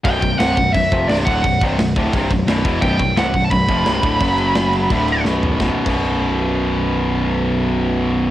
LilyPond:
<<
  \new Staff \with { instrumentName = "Lead electric guitar" } { \time 4/4 \key b \minor \tempo 4 = 173 g''4 fis''4 e''4 d''8 fis''8~ | fis''8 r2. r8 | g''4 fis''8. a''16 b''2~ | b''2. r4 |
r1 | r1 | }
  \new Staff \with { instrumentName = "Distorted electric guitar" } { \clef bass \time 4/4 \key b \minor <b,, fis, b,>8 <b,, fis,>8 <c, g, c>8 <b,, fis,>8 <b,, fis,>8 <eis, c eis>8 <c, g, c>8 <d, a, d>8 | <b,, fis,>8 <c, g, c>8 <b,, fis,>8 <d, a, d>8 <c, g, c>8 <b,, fis,>8 <b,, fis, b,>8 <e, b, e>8 | <b,, fis, b,>8 <b,, fis,>8 <c, g, c>8 <b,, fis,>8 <b,, fis,>8 <eis, c eis>8 <c, g, c>8 <d, a, d>8 | <fis, cis fis>2 <d, a, d>4 <b,, fis, b,>4 |
<b,, fis, b,>16 r8 <b,, fis, b,>2.~ <b,, fis, b,>16~ | <b,, fis, b,>1 | }
  \new Staff \with { instrumentName = "Picked electric bass" } { \clef bass \time 4/4 \key b \minor b,,,8 b,,,8 c,,8 b,,,8 b,,,8 eis,,8 c,,8 d,,8 | b,,,8 c,,8 b,,,8 d,,8 c,,8 b,,,8 b,,,8 e,,8 | b,,,8 b,,,8 c,,8 b,,,8 b,,,8 eis,,8 c,,8 d,,8 | fis,,2 d,,4 b,,,4 |
b,,,16 r8 b,,,2.~ b,,,16~ | b,,,1 | }
  \new DrumStaff \with { instrumentName = "Drums" } \drummode { \time 4/4 <cymc bd>8 <cymc bd>8 <cymc sn>8 <cymc bd>8 <cymc bd>8 <cymc bd>8 <cymc sn>8 <cymc bd>8 | <cymc bd>8 <cymc bd>8 <cymc sn>8 <cymc bd>8 <cymc bd>8 <cymc bd>8 <cymc sn>8 <cymc bd>8 | <cymc bd>8 <cymc bd>8 <cymc sn>8 <cymc bd>8 <cymc bd>8 <cymc bd>8 <cymc sn>8 <cymc bd>8 | <cymc bd>8 cymc8 <cymc sn>8 cymc8 <cymc bd>8 cymc8 sn8 tomfh8 |
<bd sn>8. <cymc bd>16 r4 r4 r4 | r4 r4 r4 r4 | }
>>